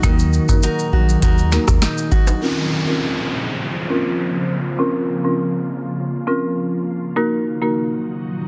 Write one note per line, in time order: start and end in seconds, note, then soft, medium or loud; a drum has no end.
0.00 0.39 D#2 loud
0.00 2.37 A#2 medium
0.00 2.37 D#3 medium
0.00 2.41 D#3 medium
0.00 2.37 F#3 medium
0.00 0.45 A#3 loud
0.00 0.62 D#4 medium
0.00 2.37 D#4 loud
0.00 0.45 D#4 medium
0.00 0.62 F#4 medium
0.00 0.45 F#4 medium
0.00 2.39 G#4 medium
0.00 0.64 A#4 medium
0.00 kick loud
0.00 closed hi-hat medium
0.00 maracas medium
0.04 0.46 A#4 loud
0.19 maracas medium
0.33 maracas medium
0.49 0.60 F#2 medium
0.49 0.65 A#3 medium
0.49 0.66 D#4 medium
0.49 0.66 F#4 medium
0.49 0.66 A#4 medium
0.49 kick medium
0.49 maracas medium
0.63 1.21 D#4 medium
0.63 0.92 F#4 medium
0.63 1.23 A#4 medium
0.63 closed hi-hat medium
0.63 maracas medium
0.79 maracas medium
0.93 1.16 A#1 loud
0.93 1.22 F#4 medium
1.09 maracas medium
1.22 1.58 D#2 loud
1.22 1.81 D#4 medium
1.22 2.10 F#4 medium
1.22 2.98 A#4 medium
1.22 kick loud
1.22 closed hi-hat medium
1.22 maracas medium
1.38 maracas medium
1.52 1.70 A#3 medium
1.52 1.70 D#4 medium
1.52 1.70 F#4 medium
1.52 1.70 A#4 medium
1.52 snare medium
1.52 maracas medium
1.68 1.79 D#2 medium
1.68 kick medium
1.68 cross-stick loud
1.68 maracas medium
1.82 2.48 D#4 medium
1.82 cross-stick medium
1.82 snare loud
1.82 closed hi-hat medium
1.82 maracas medium
1.98 maracas medium
2.12 2.35 G#1 loud
2.12 2.48 F#4 medium
2.12 kick loud
2.12 maracas medium
2.27 high timbale medium
2.27 maracas medium
2.41 7.13 C#3 medium
2.41 7.13 F3 medium
2.41 7.13 A#3 medium
2.41 2.83 C4 medium
2.41 2.83 C#4 medium
2.41 7.12 F4 medium
2.41 2.83 F4 medium
2.41 2.83 A#4 medium
2.41 4.77 C5 medium
2.41 downlifter medium
2.87 3.03 C4 medium
2.87 3.03 C#4 medium
2.87 3.03 F4 medium
2.87 3.04 A#4 medium
3.90 4.08 C4 medium
3.90 4.08 C#4 medium
3.90 4.08 F4 medium
3.90 4.08 A#4 medium
4.79 5.20 C4 medium
4.79 5.21 C#4 medium
4.79 5.21 F4 medium
4.79 5.21 A#4 loud
5.24 5.41 C4 medium
5.24 5.41 C#4 medium
5.24 5.41 F4 medium
5.24 5.41 A#4 medium
6.27 6.45 C4 medium
6.27 6.45 C#4 medium
6.27 6.45 F4 medium
6.27 6.46 A#4 medium
7.16 8.48 A#2 medium
7.16 8.48 D#3 medium
7.16 8.48 F#3 medium
7.16 7.58 A#3 medium
7.16 7.58 D#4 medium
7.16 8.48 D#4 medium
7.16 7.58 F#4 medium
7.16 8.48 F#4 medium
7.16 7.58 A#4 loud
7.62 7.78 A#3 medium
7.62 7.79 D#4 medium
7.62 7.79 F#4 medium
7.62 7.79 A#4 medium